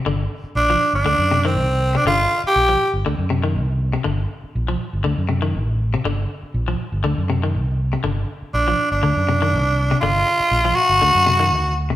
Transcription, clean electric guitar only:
\new Staff \with { instrumentName = "Clean electric guitar" } { \clef bass \time 4/4 \key g \minor \tempo 4 = 120 d8 r8. f8 r16 d8 c16 ees8 r8 c16 | d8 r8. f8 r16 d8 c16 ees8 r8 c16 | d8 r8. f8 r16 d8 c16 ees8 r8 c16 | d8 r8. f8 r16 d8 c16 ees8 r8 c16 |
d8 r8. f8 r16 d8 c16 ees8 r8 c16 | d8 r8. f8 r16 d8 c16 ees8 r8 c16 | }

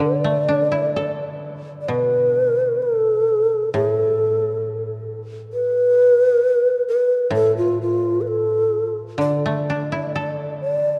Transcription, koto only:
\new Staff \with { instrumentName = "Koto" } { \time 2/4 \tempo 4 = 65 d16 a16 d'16 e'16 a'4 | b,2 | a,2~ | a,4 r4 |
a,2 | d16 a16 d'16 e'16 a'4 | }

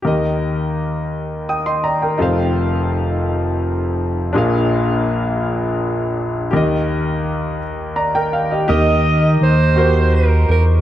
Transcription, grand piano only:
<<
  \new Staff \with { instrumentName = "Grand piano" } { \time 6/8 \key ees \major \tempo 4. = 55 << { r2 <g'' ees'''>16 <ees'' c'''>16 <d'' bes''>16 <bes' g''>16~ | <bes' g''>16 r2 r8. | r2. | r2 <d'' bes''>16 <bes' g''>16 f''16 <g' ees''>16~ |
<g' ees''>16 r2 r8. | } \\ { <g' bes' ees''>2. | <ees' f' a' c'' f''>2. | <d' f' aes' bes' f''>2. | <g' bes' ees''>4. r4. |
<g' bes' ees''>4 r8 <ges' g' bes' c''>4 r8 | } >> }
  \new Staff \with { instrumentName = "Grand piano" } { \clef bass \time 6/8 \key ees \major <ees, ees>2. | <f,, f,>2. | <bes,, bes,>2. | <ees, ees>2. |
ees4. r4. | }
>>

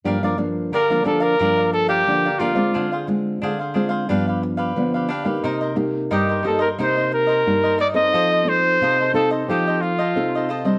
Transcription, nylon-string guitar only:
\new Staff \with { instrumentName = "Nylon-string guitar" } { \time 4/4 \key g \minor \tempo 4 = 89 << { <f bes d'>16 <f bes d'>16 <f bes d'>8 r16 <f bes d'>16 <f bes d'>8 <f bes d'>4 <f bes d'>16 r16 <f bes d'>16 <aes c' f'>16~ | <aes c' f'>16 r16 <aes c' f'>8. r16 <aes c' f'>8 <f b d'>4 <f b d'>8 r16 <bes ees' g'>16~ | <bes ees' g'>8 <bes ees' g'>4 <bes ees' g'>16 r16 <bes ees' g'>4 <bes ees' g'>8 r16 <c' ees' a'>16~ | <c' ees' a'>8 <c' ees' a'>4 <c' ees' a'>8 <c' ees' a'>8. r16 <c' ees' a'>8 r16 <g c' d'>16 | } \\ { g,4 d4 g,4 d4 | d4 d4 g,4 d4 | c4 g,4 c4 g,4 | f4 c4 f4 c4 | } >> }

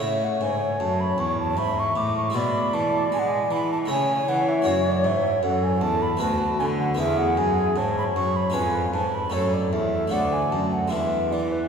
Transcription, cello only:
\new Staff \with { instrumentName = "Cello" } { \clef bass \time 3/4 \key a \major \tempo 4 = 77 a,8 gis,8 fis,8 e,8 gis,8 a,8 | b,8 e8 gis8 e8 cis8 e8 | \key fis \minor fis,8 gis,8 fis,8 e,8 d,8 d8 | e,8 fis,8 gis,8 fis,8 eis,8 gis,8 |
fis,8 e,8 d,8 fis,8 e,8 e8 | }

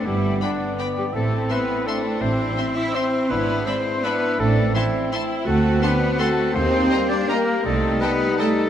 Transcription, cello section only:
\new Staff \with { instrumentName = "Cello section" } { \time 3/4 \key a \dorian \tempo 4 = 165 g4 d4 r8 g8 | a4 b4 a4 | c'4. e'8 c'4 | b4 c'4 b4 |
a4 e4 r4 | a4 b4 a4 | c'4. d'8 bes4 | a4 b4 a4 | }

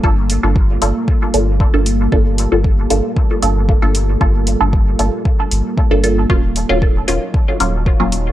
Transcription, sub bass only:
\new Staff \with { instrumentName = "Sub bass" } { \clef bass \time 4/4 \key g \minor \tempo 4 = 115 g,,8. g,,8. g,,16 r8. g,,8. g,,8. | g,,8. g,,8. g,,16 r8. g,,8. g,,8. | g,,8. g,,8. g,,16 r8. g,,16 r8 g,,8. | ees,,8. ees,,8. ees,,16 r8. ees,,8. ees,,8. | }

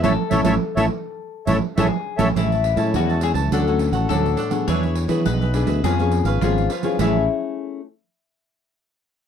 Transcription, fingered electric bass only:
\new Staff \with { instrumentName = "Fingered electric bass" } { \clef bass \time 4/4 \key a \major \tempo 4 = 104 a,,16 r16 a,,16 a,,16 r16 a,,16 r4 a,,16 r16 a,,16 r8 a,,16 | a,,8. a,16 e,8. cis,16 d,8. a,,16 d,8 r8 | e,8. e16 b,,8. d,16 eis,8. gis,,16 gis,,8 r8 | a,,8 r2. r8 | }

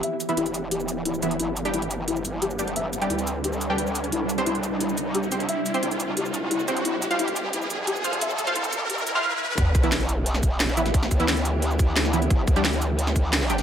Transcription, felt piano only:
\new Staff \with { instrumentName = "Felt piano" } { \time 4/4 \key e \phrygian \tempo 4 = 176 e''16 r8. e'8 r8 g'8 r8 e'8 r8 | e'16 r8. e'8 r8 e'16 r8. g'8 r8 | e''16 r8. e'8 r8 g'8 r8 b'8 r8 | e'16 r8. e'8 r8 e'16 r8. g'8 r8 |
e''16 r8. e'8 r8 g'8 r8 e'8 r8 | e'16 r8. e'8 r8 e'16 r8. g'8 r8 | e''16 r8. e'8 r8 g'8 r4. | r1 |
r1 | r1 | }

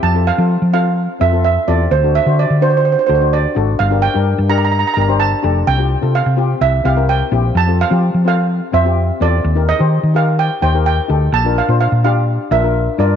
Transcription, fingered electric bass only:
\new Staff \with { instrumentName = "Fingered electric bass" } { \clef bass \time 4/4 \key f \major \tempo 4 = 127 f,8. f8 f4~ f16 f,4 e,8 | d,8. d8 d4~ d16 d,4 aes,,8 | g,,8. g,8 g,4~ g,16 g,,4 f,,8 | c,8. c8 c8. c,8 c,4 bes,,8 |
f,8. f8 f4~ f16 f,4 e,8 | ees,8. ees8 ees4~ ees16 ees,4 d,8 | bes,,8. bes,8 bes,4~ bes,16 bes,,4 g,8 | }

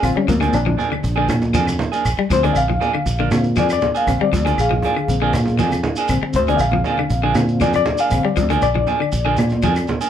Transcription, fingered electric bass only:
\new Staff \with { instrumentName = "Fingered electric bass" } { \clef bass \time 4/4 \key bes \mixolydian \tempo 4 = 119 bes,,16 r16 d,8 bes,,8 r8 bes,,8 bes,8 f,8 r8 | bes,,16 r16 d,8 bes,,8 r8 bes,,8 bes,8 f,8 r8 | bes,,16 r16 d,8 bes,,8 r8 bes,,8 bes,8 f,8 r8 | bes,,16 r16 d,8 bes,,8 r8 bes,,8 bes,8 f,8 r8 |
bes,,16 r16 d,8 bes,,8 r8 bes,,8 bes,8 f,8 r8 | }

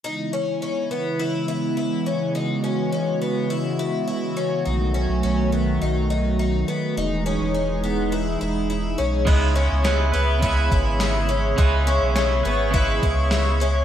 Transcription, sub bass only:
\new Staff \with { instrumentName = "Sub bass" } { \clef bass \time 4/4 \key cis \minor \tempo 4 = 104 r1 | r1 | b,,8. b,,16 b,,4 b,,4. r8 | e,,8. e,,4.~ e,,16 e,,4 b,,8 |
cis,8. cis,8. cis,4 gis,,4. | cis,8. b,,8. gis,,4 cis,4. | }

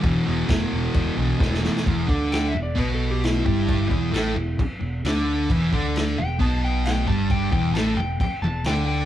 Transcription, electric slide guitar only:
\new Staff \with { instrumentName = "Electric slide guitar" } { \time 4/4 \key e \minor \tempo 4 = 132 r1 | r4 \tuplet 3/2 { g''8 e''8 d''8 b'8 a'8 g'8 e'8 e'4~ } | e'2~ e'8 r4. | r4. g''8 a''8 g''8 g''8 a''8 |
g''8 g''8 a''8 g''8 g''8 a''8 g''8 g''8 | }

